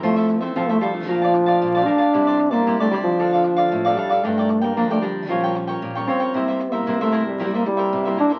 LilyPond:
<<
  \new Staff \with { instrumentName = "Cavaquinho" } { \time 4/4 \key f \major \tempo 4 = 114 <f' a' c'' e''>16 <a' c'' e''>16 r16 <a' c'' e''>16 <f' a' c'' e''>16 <a' c'' e''>16 <f' a' c'' e''>8 <bes' d'' f'' a''>16 <d'' f'' a''>16 r16 <d'' f'' a''>8 <d'' f'' a''>16 <bes' d'' f'' a''>16 <d'' f'' a''>16 | <e' g' c'' d''>16 <g' c'' d''>16 r16 <g' c'' d''>16 <e' g' c'' d''>16 <g' c'' d''>16 <e' g' c'' d''>8 <d' a' d'' f''>16 <a' d'' f''>16 r16 <a' d'' f''>8 <a' d'' f''>16 <d' a' d'' f''>16 <a' d'' f''>16 | <d' bes' d'' g''>16 <bes' d'' g''>16 r16 <bes' d'' g''>16 <d' bes' d'' g''>16 <bes' d'' g''>16 <d' bes' d'' g''>8 <f' bes' des'' g''>16 <bes' des'' g''>16 r16 <bes' des'' g''>8 <bes' des'' g''>16 <f' bes' des'' g''>16 <bes' des'' g''>16 | <e' bes' c'' e''>16 <bes' c'' e''>16 r16 <bes' c'' e''>16 <e' bes' c'' e''>16 <bes' c'' e''>16 <e' bes' c'' e''>8 <e' bes' c'' e''>16 <bes' c'' e''>16 r16 <bes' c'' e''>8 <bes' c'' e''>16 <e' bes' c'' e''>16 <bes' c'' e''>16 | }
  \new Staff \with { instrumentName = "Nylon-string guitar" } { \time 4/4 \key f \major << { <a c' e'>8. <a c' e'>8 <a c' e'>8 <a d' f'>8. <a d' f'>8. <a d' f'>8. | <g d' e'>8. <g d' e'>8 <g d' e'>8. <f a d'>16 r16 <f a d'>8. <f a d'>8. | <g d'>8. <g bes d'>8 <g bes d'>8. <g des' f'>8 <g des' f'>8. <g des' f'>8. | <g bes e'>8 r16 <g bes e'>8 <g bes e'>8. <g bes e'>16 r16 <g bes e'>8. <g bes e'>8. | } \\ { f4 c4 bes,4 f4 | c4 g4 d4 a,4 | g,4 d4 bes,4 f4 | c4 g,4 c4 g,4 | } >> }
  \new Staff \with { instrumentName = "Trombone" } { \time 4/4 \key f \major a8. c'16 c'16 a16 g8 f4. d'8~ | d'8. bes8 a16 g16 f4.~ f16 g8 | a8. bes16 bes16 a16 g8 f4 r8 c'8~ | c'8. bes8 a8 g8 bes16 g4 d'8 | }
  \new Staff \with { instrumentName = "Nylon-string guitar" } { \clef bass \time 4/4 \key f \major f4 f4 bes,4 bes,8 r8 | c4 c4 d4 a,8 r8 | g,4 f4 bes,4 bes,8 r8 | c4 c4 g4 c8 r8 | }
>>